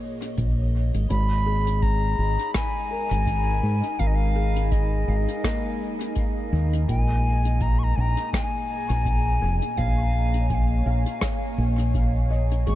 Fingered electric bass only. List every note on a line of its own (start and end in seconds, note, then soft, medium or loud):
0.38 0.90 A#1 medium
0.94 1.08 G#1 medium
1.10 2.16 G#1 loud
2.19 2.36 G#1 medium
3.11 3.60 G#1 medium
3.63 3.81 G#2 medium
3.99 5.05 G#1 medium
5.08 5.26 G#1 medium
6.53 6.85 D#2 medium
6.89 7.94 A#1 medium
7.97 8.15 A#1 medium
8.90 9.39 A#1 medium
9.42 9.60 F1 medium
9.78 10.83 A#1 medium
10.86 11.04 A#1 medium
11.58 12.64 A#1 medium
12.67 12.75 G#1 medium